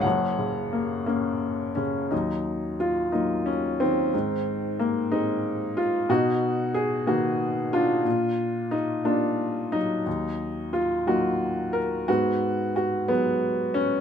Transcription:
<<
  \new Staff \with { instrumentName = "Upright piano" } { \time 6/8 \key fis \major \tempo 4. = 60 fis''4. ais4 cis'8 | \key ees \minor ees'4 f'8 ees'8 des'8 c'8~ | c'4 bes8 ees'4 f'8 | fis'4 aes'8 fis'4 f'8~ |
f'4 ees'8 d'4 ees'8~ | ees'4 f'8 ges'4 bes'8 | ges'4 ges'8 ces'4 des'8 | }
  \new Staff \with { instrumentName = "Upright piano" } { \clef bass \time 6/8 \key fis \major << { cis''2~ cis''8 r8 | \key ees \minor ges4. r4 ees8~ | ees4 r2 | dis'4. r4 d'8~ |
d'4 r4. ges8~ | ges4 r2 | ces'4. r4. | } \\ { <fis,, fis,>8 cis8 ais8 cis'4 cis8 | ees,4. <ges bes>4. | aes,4. <aes c'>4. | b,4. <dis ais b>4. |
bes,4. <bes f' d''>4. | ees,4. <ges bes ees'>4. | aes,4. <ges aes>4. | } >> }
>>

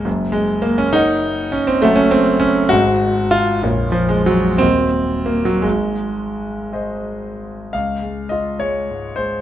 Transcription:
\new Staff \with { instrumentName = "Grand piano" } { \time 6/8 \key des \major \tempo 4. = 66 << { <ges,, ges,>4. <bes' des'' ges''>4. | <ges,, ges, a' des'' ges''>4. <aes,, aes, aes' c'' ees''>4. | <bes,,, bes,, f' bes' des''>4. <ees,, ees, ges' bes' ees''>4. | <aes,, aes,>4. <aes' c'' ees''>4. |
des,8 aes8 f'8 aes8 aes,8 aes8 | } \\ { r8 aes8 bes16 des'16 ees'4 des'16 c'16 | a16 des'16 c'8 des'8 ges'4 f'8 | r8 f16 aes16 ges8 c'4 bes16 ges16 | aes4. r4. |
f''4 ees''8 des''4 c''8 | } >> }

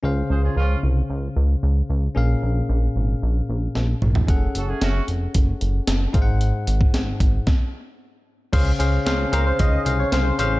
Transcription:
<<
  \new Staff \with { instrumentName = "Analog synth lead" } { \time 4/4 \key des \major \tempo 4 = 113 r1 | r1 | r1 | r1 |
r4. bes'16 c''16 ees''8. des''16 c''8. r16 | }
  \new Staff \with { instrumentName = "Tine electric piano" } { \time 4/4 \key des \major <des' aes' c'' f''>1 | <des' aes' bes' f''>1 | <des' aes' a' ges''>2.~ <des' aes' a' ges''>8 <ees' aes' c'' f'' ges''>8~ | <ees' aes' c'' f'' ges''>2 r2 |
<des' aes' c'' f''>8 <des' aes' c'' f''>8 <des' aes' c'' f''>8 <des' aes' c'' f''>8 <des' aes' c'' f''>8 <des' aes' c'' f''>8 <des' aes' c'' f''>8 <des' aes' c'' f''>8 | }
  \new Staff \with { instrumentName = "Tine electric piano" } { \clef bass \time 4/4 \key des \major des4. r2 r8 | bes,4. r2 r8 | r2. r8 aes,8~ | aes,4 r2. |
des4. r2 r8 | }
  \new Staff \with { instrumentName = "Horn section" } { \time 4/4 \key des \major r8 <f' aes' c''>16 <des' f' aes'>16 <f des' f'>8 r2 r8 | r1 | r8 <des' ges' a'>16 <a des' aes'>16 <a des' ges'>8 r2 r8 | r1 |
r1 | }
  \new Staff \with { instrumentName = "Analog synth bass" } { \clef bass \time 4/4 \key des \major des,8 des,8 des,8 c,8 des,8 des,8 des,8 des,8 | bes,,8 bes,,8 bes,,8 aes,,8 bes,,8 bes,,8 bes,,8 bes,,8 | ges,,8 ges,,8 ges,,8 f,,8 ges,,8 ges,,8 ges,,8 aes,,8~ | aes,,8 aes,,8 aes,,8 aes,,8 r2 |
des,8 des,8 des,8 des,8 des,8 c,8 c,8 a,,8 | }
  \new DrumStaff \with { instrumentName = "Drums" } \drummode { \time 4/4 r4 r4 r4 r4 | r4 r4 r4 sn8 toml16 tomfh16 | <hh bd>8 hh8 <hh sn>8 hh8 <hh bd>8 hh8 <hh sn>8 <hh bd>8 | hh8 hh16 bd16 <hh sn>8 <hh bd>8 <bd sn>4 r4 |
<cymc hh bd>8 hh8 <hh sn>8 hh8 <hh bd>8 hh8 <hh sn>8 hh8 | }
>>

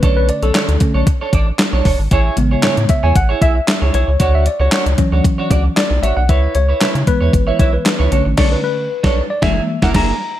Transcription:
<<
  \new Staff \with { instrumentName = "Tine electric piano" } { \time 4/4 \key b \dorian \tempo 4 = 115 b'16 b'16 d''16 a'4 r2 r16 | r4 cis''8 e''16 gis''16 fis''8 e''4 cis''8~ | cis''16 e''16 d''16 cis''4 r4 r16 d''8 e''16 fis''16 | e''8 cis''4 b'8. e''16 cis''16 b'4 r16 |
d''16 b'16 b'4~ b'16 d''16 e''8. fis''16 ais''4 | }
  \new Staff \with { instrumentName = "Tine electric piano" } { \clef bass \time 4/4 \key b \dorian <d a cis'>4. <d a cis'>8 r2 | r8 <cis gis b>4. r2 | r4. <e fis cis'>4. r4 | r4. <e gis b>2 <d a cis'>8~ |
<d a cis'>4 r4 <e gis ais>8 r4. | }
  \new Staff \with { instrumentName = "Clean electric guitar" } { \time 4/4 \key b \dorian <d' a' cis''>8 r16 <d' a' cis''>16 <d' a' cis''>16 r8 <d' a' cis''>16 r16 <d' a' cis''>16 <d' a' d''>16 r8 <d' a' cis''>16 <d' a' cis''>16 r16 | <e' gis' cis''>8 r16 <e' gis' cis''>16 <e' gis' cis''>16 r8 <e' gis' cis''>16 r16 <e' gis' cis''>16 <e' gis' e''>16 r8 <e' gis' cis''>16 <e' gis' cis''>16 r16 | <d' fis' cis''>8 r16 <d' fis' cis''>16 <d' fis' cis''>16 r8 <d' fis' cis''>16 r16 <d' fis' cis''>16 <d' fis' d''>16 r8. <d' fis' cis''>16 r16 | <e' b' cis''>8 r16 <e' b' cis''>16 <e' b' cis''>16 r8 <e' b' cis''>16 r16 <e' b' cis''>16 <e' b' e''>16 r8 <e' b' cis''>16 <d' a' cis''>16 r16 |
<d' a' cis''>8 r8. <d' a' cis''>8 r16 <ais e' gis'>8 r16 <ais e' ais'>16 <ais e' gis'>8 r8 | }
  \new Staff \with { instrumentName = "Analog synth bass" } { \clef bass \time 4/4 \key b \dorian b,,8. b,,16 r16 d,16 r16 b,,16 r8 a,,8 r16 b,,16 fis,,16 gis,,16 | a,,8 a,,8 a,16 a,16 r16 e,16 a,,8 b,,8 r16 cis,16 b,,16 cis,16 | d,8. cis,16 r16 cis,16 r16 d,16 r8 cis,8 r16 b,,16 a,,16 b,,16 | cis,8 cis,8 cis16 cis16 r16 e,16 gis,,8 b,,8 r16 cis,16 b,,16 a,,16 |
b,,8 r8. b,,8 r16 fis,,8 r16 fis,,16 fis,,8 r8 | }
  \new DrumStaff \with { instrumentName = "Drums" } \drummode { \time 4/4 <hh bd>8 hh16 hh16 <hc hh sn>16 hh16 <hh bd>8 <hh bd>8 <hh bd>8 <hc hh sn>8 <hho bd>8 | <hh bd>8 hh8 <hc hh sn>16 hh16 <hh bd>8 <hh bd>8 <hh bd>8 <hc hh sn>8 hh8 | <hh bd>8 hh8 <hc hh sn>16 hh16 <hh bd>8 <hh bd>8 <hh bd>8 <hc hh sn>8 hh8 | <hh bd>8 hh8 <hc hh sn>16 hh16 <hh bd>8 <hh bd>8 <hh bd>8 <hc hh sn>8 hh8 |
<cymc bd sn>4 r16 <bd sn>8. <bd sn>8. <bd sn>16 <cymc bd sn>4 | }
>>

